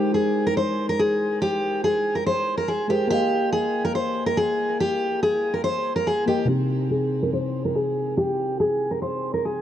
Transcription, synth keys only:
0, 0, Header, 1, 2, 480
1, 0, Start_track
1, 0, Key_signature, -3, "minor"
1, 0, Tempo, 422535
1, 1609, Time_signature, 4, 2, 24, 8
1, 10924, End_track
2, 0, Start_track
2, 0, Title_t, "Synth keys"
2, 0, Program_c, 0, 88
2, 0, Control_c, 0, 64, 127
2, 0, Note_on_c, 0, 56, 71
2, 0, Note_on_c, 0, 63, 63
2, 0, Note_on_c, 0, 70, 62
2, 0, Note_on_c, 0, 72, 77
2, 3225, Note_off_c, 0, 56, 0
2, 3238, Note_off_c, 0, 63, 0
2, 3250, Note_off_c, 0, 70, 0
2, 3262, Note_off_c, 0, 72, 0
2, 3270, Note_on_c, 0, 56, 54
2, 3282, Note_on_c, 0, 68, 49
2, 3295, Note_on_c, 0, 70, 49
2, 3306, Note_on_c, 0, 72, 59
2, 3492, Note_on_c, 0, 58, 73
2, 3503, Note_off_c, 0, 70, 0
2, 3516, Note_on_c, 0, 70, 62
2, 3519, Note_off_c, 0, 56, 0
2, 3525, Note_off_c, 0, 68, 0
2, 3538, Note_off_c, 0, 72, 0
2, 3541, Note_on_c, 0, 75, 62
2, 3545, Control_c, 0, 64, 0
2, 3566, Note_on_c, 0, 77, 79
2, 3754, Control_c, 0, 64, 127
2, 7065, Note_off_c, 0, 58, 0
2, 7077, Note_off_c, 0, 70, 0
2, 7089, Note_off_c, 0, 75, 0
2, 7102, Note_off_c, 0, 77, 0
2, 7112, Note_on_c, 0, 58, 56
2, 7125, Note_on_c, 0, 70, 50
2, 7136, Note_on_c, 0, 75, 48
2, 7150, Note_on_c, 0, 79, 57
2, 7330, Note_on_c, 0, 48, 64
2, 7355, Note_on_c, 0, 60, 62
2, 7360, Note_off_c, 0, 58, 0
2, 7367, Note_off_c, 0, 70, 0
2, 7373, Note_off_c, 0, 75, 0
2, 7379, Note_off_c, 0, 79, 0
2, 7380, Note_on_c, 0, 63, 65
2, 7382, Control_c, 0, 64, 0
2, 7572, Control_c, 0, 64, 127
2, 10924, Note_off_c, 0, 48, 0
2, 10924, Note_off_c, 0, 60, 0
2, 10924, Note_off_c, 0, 63, 0
2, 10924, End_track
0, 0, End_of_file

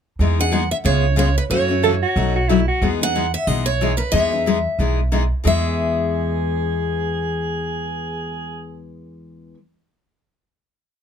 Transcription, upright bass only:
0, 0, Header, 1, 2, 480
1, 0, Start_track
1, 0, Key_signature, 4, "major"
1, 0, Tempo, 328048
1, 274, Time_signature, 4, 2, 24, 8
1, 16130, End_track
2, 0, Start_track
2, 0, Title_t, "Upright bass"
2, 0, Program_c, 0, 32
2, 281, Note_on_c, 0, 40, 79
2, 1044, Note_off_c, 0, 40, 0
2, 1240, Note_on_c, 0, 37, 87
2, 2004, Note_off_c, 0, 37, 0
2, 2192, Note_on_c, 0, 42, 80
2, 2959, Note_off_c, 0, 42, 0
2, 3158, Note_on_c, 0, 35, 84
2, 3924, Note_off_c, 0, 35, 0
2, 4121, Note_on_c, 0, 40, 88
2, 4887, Note_off_c, 0, 40, 0
2, 5080, Note_on_c, 0, 35, 86
2, 5848, Note_off_c, 0, 35, 0
2, 6038, Note_on_c, 0, 40, 88
2, 6808, Note_off_c, 0, 40, 0
2, 7004, Note_on_c, 0, 35, 78
2, 7773, Note_off_c, 0, 35, 0
2, 7973, Note_on_c, 0, 40, 89
2, 13948, Note_off_c, 0, 40, 0
2, 16130, End_track
0, 0, End_of_file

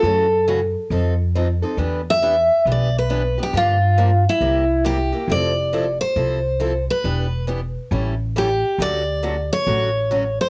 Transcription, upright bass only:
0, 0, Header, 1, 2, 480
1, 0, Start_track
1, 0, Tempo, 437637
1, 42, Time_signature, 4, 2, 24, 8
1, 11505, End_track
2, 0, Start_track
2, 0, Title_t, "Upright bass"
2, 0, Program_c, 0, 32
2, 33, Note_on_c, 0, 42, 77
2, 805, Note_off_c, 0, 42, 0
2, 993, Note_on_c, 0, 41, 76
2, 1765, Note_off_c, 0, 41, 0
2, 1945, Note_on_c, 0, 40, 78
2, 2721, Note_off_c, 0, 40, 0
2, 2909, Note_on_c, 0, 35, 76
2, 3683, Note_off_c, 0, 35, 0
2, 3873, Note_on_c, 0, 43, 78
2, 4646, Note_off_c, 0, 43, 0
2, 4830, Note_on_c, 0, 36, 68
2, 5604, Note_off_c, 0, 36, 0
2, 5787, Note_on_c, 0, 29, 76
2, 6562, Note_off_c, 0, 29, 0
2, 6757, Note_on_c, 0, 36, 74
2, 7528, Note_off_c, 0, 36, 0
2, 7725, Note_on_c, 0, 28, 74
2, 8492, Note_off_c, 0, 28, 0
2, 8675, Note_on_c, 0, 33, 85
2, 9446, Note_off_c, 0, 33, 0
2, 9632, Note_on_c, 0, 38, 76
2, 10404, Note_off_c, 0, 38, 0
2, 10600, Note_on_c, 0, 33, 82
2, 11369, Note_off_c, 0, 33, 0
2, 11505, End_track
0, 0, End_of_file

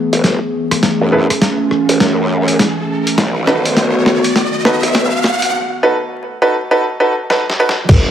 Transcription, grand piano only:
0, 0, Header, 1, 2, 480
1, 0, Start_track
1, 0, Tempo, 588235
1, 676, Time_signature, 4, 2, 24, 8
1, 6617, End_track
2, 0, Start_track
2, 0, Title_t, "Grand piano"
2, 0, Program_c, 0, 0
2, 915, Note_on_c, 0, 64, 74
2, 916, Note_on_c, 0, 68, 68
2, 916, Note_on_c, 0, 71, 80
2, 917, Note_on_c, 0, 69, 68
2, 1006, Note_off_c, 0, 64, 0
2, 1006, Note_off_c, 0, 68, 0
2, 1007, Note_off_c, 0, 69, 0
2, 1007, Note_off_c, 0, 71, 0
2, 2836, Note_on_c, 0, 63, 90
2, 2836, Note_on_c, 0, 66, 82
2, 2836, Note_on_c, 0, 69, 81
2, 2836, Note_on_c, 0, 71, 98
2, 2926, Note_off_c, 0, 63, 0
2, 2927, Note_off_c, 0, 66, 0
2, 2927, Note_off_c, 0, 69, 0
2, 2927, Note_off_c, 0, 71, 0
2, 3794, Note_on_c, 0, 63, 92
2, 3795, Note_on_c, 0, 69, 85
2, 3796, Note_on_c, 0, 66, 83
2, 3796, Note_on_c, 0, 71, 105
2, 3886, Note_off_c, 0, 63, 0
2, 3886, Note_off_c, 0, 66, 0
2, 3886, Note_off_c, 0, 69, 0
2, 3886, Note_off_c, 0, 71, 0
2, 4757, Note_on_c, 0, 66, 91
2, 4757, Note_on_c, 0, 69, 90
2, 4758, Note_on_c, 0, 63, 97
2, 4758, Note_on_c, 0, 71, 107
2, 4847, Note_off_c, 0, 63, 0
2, 4847, Note_off_c, 0, 66, 0
2, 4847, Note_off_c, 0, 69, 0
2, 4848, Note_off_c, 0, 71, 0
2, 5237, Note_on_c, 0, 63, 100
2, 5237, Note_on_c, 0, 66, 94
2, 5237, Note_on_c, 0, 69, 93
2, 5237, Note_on_c, 0, 71, 110
2, 5327, Note_off_c, 0, 63, 0
2, 5327, Note_off_c, 0, 66, 0
2, 5327, Note_off_c, 0, 69, 0
2, 5327, Note_off_c, 0, 71, 0
2, 5475, Note_on_c, 0, 63, 102
2, 5476, Note_on_c, 0, 66, 93
2, 5476, Note_on_c, 0, 69, 90
2, 5476, Note_on_c, 0, 71, 114
2, 5566, Note_off_c, 0, 63, 0
2, 5567, Note_off_c, 0, 66, 0
2, 5567, Note_off_c, 0, 69, 0
2, 5567, Note_off_c, 0, 71, 0
2, 5713, Note_on_c, 0, 63, 100
2, 5713, Note_on_c, 0, 66, 91
2, 5713, Note_on_c, 0, 69, 92
2, 5713, Note_on_c, 0, 71, 110
2, 5805, Note_off_c, 0, 63, 0
2, 5805, Note_off_c, 0, 66, 0
2, 5805, Note_off_c, 0, 69, 0
2, 5805, Note_off_c, 0, 71, 0
2, 5958, Note_on_c, 0, 66, 93
2, 5958, Note_on_c, 0, 69, 93
2, 5959, Note_on_c, 0, 71, 115
2, 5960, Note_on_c, 0, 63, 104
2, 6048, Note_off_c, 0, 66, 0
2, 6048, Note_off_c, 0, 69, 0
2, 6048, Note_off_c, 0, 71, 0
2, 6049, Note_off_c, 0, 63, 0
2, 6200, Note_on_c, 0, 63, 104
2, 6200, Note_on_c, 0, 69, 97
2, 6200, Note_on_c, 0, 71, 116
2, 6201, Note_on_c, 0, 66, 94
2, 6288, Note_off_c, 0, 63, 0
2, 6289, Note_off_c, 0, 66, 0
2, 6289, Note_off_c, 0, 69, 0
2, 6289, Note_off_c, 0, 71, 0
2, 6617, End_track
0, 0, End_of_file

